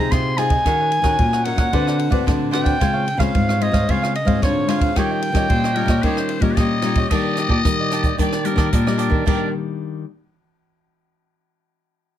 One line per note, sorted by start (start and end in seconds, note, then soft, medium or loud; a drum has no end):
0.00 0.34 C4 medium
0.00 0.34 D#4 medium
0.00 0.11 G#4 soft
0.00 0.34 G#4 medium
0.00 0.10 C5 medium
0.00 0.13 A#5 medium
0.11 0.63 C3 medium
0.11 0.37 F4 soft
0.11 0.37 G#4 medium
0.11 0.38 C5 medium
0.11 0.38 D#5 medium
0.11 0.40 C6 loud
0.11 kick medium
0.11 cross-stick medium
0.11 ride soft
0.38 0.54 C4 medium
0.38 0.54 D#4 medium
0.38 0.51 F4 medium
0.38 0.51 G#4 medium
0.38 0.55 G#4 medium
0.38 0.51 C5 medium
0.38 0.50 D#5 medium
0.38 1.46 G#5 loud
0.38 cross-stick medium
0.38 ride medium
0.50 0.65 G#4 soft
0.50 0.65 C5 soft
0.50 0.64 D#5 soft
0.50 kick medium
0.50 ride soft
0.65 1.17 D#3 medium
0.65 0.91 C#4 medium
0.65 0.78 D#4 medium
0.65 0.91 F#4 medium
0.65 0.91 A#4 medium
0.65 0.78 A#4 medium
0.65 0.79 C#5 medium
0.65 0.78 F#5 medium
0.65 kick medium
0.65 cross-stick medium
0.65 ride soft
0.80 0.90 A#4 soft
0.80 0.91 C#5 soft
0.80 0.91 F#5 soft
0.91 muted cavaquinho stroke soft
0.91 ride soft
1.02 1.15 D#3 medium
1.02 1.41 C#4 medium
1.02 1.41 F#4 medium
1.02 1.31 A#4 medium
1.02 1.42 A#4 medium
1.02 1.31 C#5 medium
1.02 1.31 F#5 medium
1.02 kick medium
1.02 cross-stick medium
1.02 ride soft
1.19 1.71 A#2 medium
1.19 kick medium
1.19 ride soft
1.33 1.45 A#4 soft
1.33 1.46 C#5 soft
1.33 1.45 F#5 medium
1.33 cross-stick medium
1.44 1.68 C#4 medium
1.44 1.59 D#4 soft
1.44 1.69 F#4 medium
1.44 1.59 A#4 medium
1.44 1.69 A#4 medium
1.44 1.58 C#5 medium
1.44 2.26 F#5 medium
1.44 1.57 F#5 medium
1.44 ride soft
1.56 1.69 A#2 medium
1.56 1.72 C#5 medium
1.56 1.71 F#5 medium
1.56 kick medium
1.56 cross-stick medium
1.56 ride soft
1.60 1.72 A#4 medium
1.73 2.24 D3 medium
1.73 2.09 C4 medium
1.73 1.85 D4 medium
1.73 2.09 F#4 medium
1.73 2.09 B4 medium
1.73 1.85 C5 medium
1.73 1.86 D5 medium
1.73 1.86 F#5 medium
1.73 kick medium
1.73 ride soft
1.87 1.98 C5 soft
1.87 1.98 D5 soft
1.87 1.98 F#5 soft
1.87 cross-stick medium
1.99 muted cavaquinho stroke soft
1.99 ride soft
2.10 2.23 A2 medium
2.10 2.48 C4 medium
2.10 2.49 F#4 medium
2.10 2.49 B4 medium
2.10 2.25 C5 medium
2.10 2.25 D5 medium
2.10 2.24 F#5 medium
2.10 kick medium
2.10 ride soft
2.26 2.78 A2 medium
2.26 2.73 D3 medium
2.26 2.50 D4 soft
2.26 2.51 C5 medium
2.26 2.51 D5 medium
2.26 2.52 F#5 medium
2.26 kick medium
2.26 cross-stick medium
2.26 ride soft
2.51 2.76 C4 medium
2.51 2.65 D4 medium
2.51 2.76 F#4 medium
2.51 2.77 B4 medium
2.51 2.64 C5 medium
2.51 2.63 D5 medium
2.51 2.63 F#5 medium
2.51 3.21 G5 loud
2.51 cross-stick medium
2.51 ride soft
2.64 2.79 C5 soft
2.64 2.78 D5 soft
2.64 2.78 F#5 soft
2.64 kick medium
2.64 ride soft
2.80 3.32 C#3 soft
2.80 3.06 G#3 medium
2.80 3.06 C4 medium
2.80 2.93 F4 medium
2.80 3.07 F4 medium
2.80 2.93 C5 medium
2.80 2.93 C#5 medium
2.80 2.92 F5 medium
2.80 kick medium
2.80 cross-stick medium
2.80 ride soft
2.93 3.05 C5 soft
2.93 3.06 C#5 soft
2.93 3.06 F5 soft
3.06 muted cavaquinho stroke soft
3.06 ride soft
3.18 3.30 C#3 medium
3.18 3.56 G#3 medium
3.18 3.56 C4 medium
3.18 3.57 F4 medium
3.18 3.47 C5 medium
3.18 3.46 C#5 medium
3.18 3.64 F5 loud
3.18 3.46 F5 medium
3.18 kick medium
3.18 cross-stick medium
3.18 ride soft
3.35 3.86 G#2 medium
3.35 kick medium
3.35 ride soft
3.49 3.60 C5 soft
3.49 3.61 C#5 soft
3.49 3.61 F5 soft
3.49 cross-stick medium
3.60 3.77 G#3 medium
3.60 3.77 C4 medium
3.60 3.73 F4 soft
3.60 3.78 F4 medium
3.60 3.74 C5 medium
3.60 3.73 C#5 medium
3.60 3.92 D#5 medium
3.60 3.72 F5 medium
3.60 ride soft
3.72 3.84 G#2 medium
3.72 3.87 C5 medium
3.72 3.87 C#5 medium
3.72 3.86 F5 medium
3.72 kick medium
3.72 cross-stick medium
3.72 ride medium
3.89 4.40 C#3 medium
3.89 4.14 G#3 medium
3.89 4.14 C4 medium
3.89 4.01 F4 medium
3.89 4.14 F4 medium
3.89 4.01 C5 medium
3.89 4.02 C#5 medium
3.89 4.16 F5 loud
3.89 4.01 F5 medium
3.89 kick medium
3.89 ride soft
4.02 4.14 C5 soft
4.02 4.15 C#5 soft
4.02 4.14 F5 medium
4.02 cross-stick medium
4.15 4.44 D#5 medium
4.15 muted cavaquinho stroke soft
4.15 ride soft
4.25 4.38 G#2 medium
4.25 4.64 G#3 medium
4.25 4.64 C4 medium
4.25 4.64 F4 medium
4.25 4.41 C5 medium
4.25 4.40 C#5 medium
4.25 4.40 F5 medium
4.25 kick medium
4.25 ride medium
4.42 4.94 G#2 medium
4.42 4.88 D3 medium
4.42 4.67 F4 soft
4.42 4.67 C5 medium
4.42 4.71 C#5 medium
4.42 4.68 C#5 medium
4.42 4.69 F5 medium
4.42 kick medium
4.42 cross-stick medium
4.42 ride medium
4.68 4.91 G#3 medium
4.68 4.91 C4 medium
4.68 4.81 F4 medium
4.68 4.91 F4 medium
4.68 4.81 C5 medium
4.68 4.80 C#5 medium
4.68 4.99 F5 medium
4.68 4.80 F5 medium
4.68 cross-stick medium
4.68 ride medium
4.81 4.95 C5 soft
4.81 4.94 C#5 soft
4.81 4.94 F5 soft
4.81 kick medium
4.81 ride medium
4.96 5.47 D#3 medium
4.96 5.32 G3 medium
4.96 5.32 C#4 medium
4.96 5.09 D#4 medium
4.96 5.32 F4 medium
4.96 5.09 G4 medium
4.96 5.10 C#5 medium
4.96 5.10 D#5 medium
4.96 6.58 G5 loud
4.96 kick medium
4.96 cross-stick medium
4.96 ride medium
5.11 5.21 G4 soft
5.11 5.21 C#5 soft
5.11 5.21 D#5 medium
5.22 muted cavaquinho stroke soft
5.22 ride soft
5.32 5.45 D#3 medium
5.32 5.71 G3 medium
5.32 5.71 C#4 medium
5.32 5.71 F4 medium
5.32 5.62 D#5 medium
5.32 kick medium
5.32 cross-stick medium
5.32 ride soft
5.37 5.62 G4 medium
5.37 5.62 C#5 medium
5.49 6.00 A#2 medium
5.49 5.77 C5 medium
5.49 kick medium
5.49 ride soft
5.64 5.75 G4 soft
5.64 5.76 C#5 soft
5.64 5.76 D#5 soft
5.64 cross-stick medium
5.75 5.92 G3 medium
5.75 5.92 C#4 medium
5.75 5.88 D#4 medium
5.75 5.92 F4 medium
5.75 5.89 G4 medium
5.75 6.03 A#4 medium
5.75 5.89 C#5 medium
5.75 5.88 D#5 medium
5.75 ride soft
5.86 5.99 A#2 medium
5.86 6.02 D#5 medium
5.86 kick medium
5.86 cross-stick medium
5.86 ride medium
5.90 6.03 G4 medium
5.90 6.02 C#5 medium
6.02 6.55 D#3 medium
6.02 6.39 G3 medium
6.02 6.40 C#4 medium
6.02 6.16 D#4 medium
6.02 6.40 F4 medium
6.02 6.17 G4 medium
6.02 6.43 C5 medium
6.02 6.17 C#5 medium
6.02 kick medium
6.02 ride soft
6.06 6.17 D#5 medium
6.17 6.29 G4 soft
6.17 6.30 C#5 soft
6.17 6.30 D#5 soft
6.17 cross-stick medium
6.29 muted cavaquinho stroke soft
6.29 ride soft
6.40 6.53 A#2 medium
6.40 6.79 G3 medium
6.40 6.79 C#4 medium
6.40 6.79 F4 medium
6.40 6.57 A#4 medium
6.40 6.56 C#5 medium
6.40 6.55 D#5 medium
6.40 kick medium
6.40 ride soft
6.44 6.56 G4 medium
6.56 7.08 A#2 medium
6.56 6.83 D#4 medium
6.56 6.83 G4 medium
6.56 7.09 D#5 loud
6.56 kick medium
6.56 cross-stick medium
6.56 ride soft
6.60 6.84 C#5 medium
6.60 6.85 D#5 medium
6.82 7.06 G3 medium
6.82 7.06 C#4 medium
6.82 6.96 D#4 medium
6.82 7.06 F4 medium
6.82 6.97 G4 medium
6.82 6.97 C#5 medium
6.82 6.96 D#5 medium
6.82 cross-stick medium
6.82 ride soft
6.95 7.11 G4 soft
6.95 7.10 C#5 soft
6.95 7.10 D#5 medium
6.95 kick medium
6.95 ride soft
7.09 7.62 D#3 medium
7.09 7.46 G3 medium
7.09 7.46 A#3 medium
7.09 7.37 D4 medium
7.09 7.37 G4 medium
7.09 7.38 D5 medium
7.09 8.14 D#5 loud
7.09 7.37 D#5 medium
7.09 kick medium
7.09 cross-stick medium
7.09 crash medium
7.37 7.49 D4 soft
7.37 7.49 G4 medium
7.37 7.49 D5 medium
7.37 7.49 D#5 medium
7.37 cross-stick medium
7.37 closed hi-hat soft
7.47 7.61 A#2 medium
7.47 7.60 D4 medium
7.47 7.60 G4 medium
7.47 7.60 D5 medium
7.47 7.60 D#5 medium
7.47 kick medium
7.64 8.16 A#2 medium
7.64 8.11 D#3 medium
7.64 8.14 G3 medium
7.64 8.14 A#3 medium
7.64 kick medium
7.64 cross-stick medium
7.64 closed hi-hat medium
7.80 7.91 G4 soft
7.80 7.92 D5 soft
7.80 7.92 D#5 soft
7.91 8.04 D4 medium
7.91 8.04 G4 medium
7.91 8.04 D5 medium
7.91 8.05 D#5 medium
7.91 cross-stick medium
7.91 closed hi-hat soft
8.03 8.18 D5 soft
8.03 8.18 D#5 soft
8.03 kick medium
8.03 closed hi-hat soft
8.08 8.19 G4 soft
8.18 8.69 D#3 medium
8.18 8.34 G3 medium
8.18 8.34 A#3 medium
8.18 8.35 D4 medium
8.18 8.44 D4 medium
8.18 8.45 G4 medium
8.18 8.46 D5 loud
8.18 kick medium
8.18 closed hi-hat medium
8.22 8.46 D5 medium
8.22 8.45 D#5 medium
8.32 cross-stick medium
8.32 closed hi-hat soft
8.44 8.81 G3 medium
8.44 8.81 A#3 medium
8.44 8.81 D4 medium
8.44 8.57 D4 soft
8.44 8.57 G4 soft
8.44 9.26 A#4 medium
8.44 8.58 D5 medium
8.44 8.57 D#5 medium
8.44 closed hi-hat medium
8.56 8.68 D#3 medium
8.56 8.67 D4 medium
8.56 8.68 G4 medium
8.56 8.68 D5 medium
8.56 8.68 D#5 medium
8.56 kick medium
8.56 cross-stick medium
8.56 closed hi-hat soft
8.73 9.24 A#2 medium
8.73 8.85 D4 medium
8.73 8.85 G4 soft
8.73 8.85 D5 medium
8.73 8.85 D#5 medium
8.73 kick medium
8.73 closed hi-hat medium
8.86 9.22 G3 medium
8.86 9.22 A#3 medium
8.86 9.23 D4 medium
8.86 8.97 G4 soft
8.86 8.98 D5 medium
8.86 8.98 D#5 soft
8.86 cross-stick medium
8.98 9.24 D4 medium
8.98 9.25 G4 medium
8.98 9.25 D5 medium
8.98 9.25 D#5 medium
8.98 closed hi-hat medium
9.10 9.22 D#3 medium
9.10 kick medium
9.25 10.04 D#3 medium
9.25 10.04 G3 medium
9.25 10.04 A#3 medium
9.25 9.48 D4 medium
9.25 10.04 D4 medium
9.25 9.48 G4 medium
9.25 9.52 A#4 medium
9.25 9.49 D5 medium
9.25 9.48 D#5 medium
9.25 kick medium
9.25 crash medium